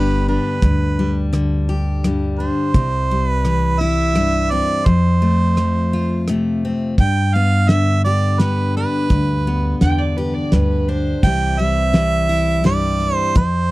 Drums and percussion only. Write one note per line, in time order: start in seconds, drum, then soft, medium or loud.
0.62 kick loud
0.62 closed hi-hat medium
1.33 cross-stick medium
1.33 closed hi-hat medium
2.04 cross-stick medium
2.04 closed hi-hat medium
2.74 kick loud
2.74 closed hi-hat medium
3.45 cross-stick medium
3.45 closed hi-hat soft
4.16 cross-stick medium
4.16 closed hi-hat medium
4.86 kick loud
4.86 closed hi-hat medium
5.57 cross-stick medium
5.57 closed hi-hat medium
6.28 cross-stick medium
6.28 closed hi-hat medium
6.98 kick loud
6.98 closed hi-hat medium
7.69 snare medium
7.69 closed hi-hat medium
8.40 snare medium
8.40 closed hi-hat medium
9.10 kick loud
9.10 closed hi-hat medium
9.81 snare medium
9.81 closed hi-hat medium
10.52 snare medium
10.52 closed hi-hat medium
11.23 kick loud
11.23 closed hi-hat medium
11.94 snare medium
11.94 closed hi-hat medium
12.65 snare medium
12.65 closed hi-hat medium
13.35 kick loud
13.35 closed hi-hat medium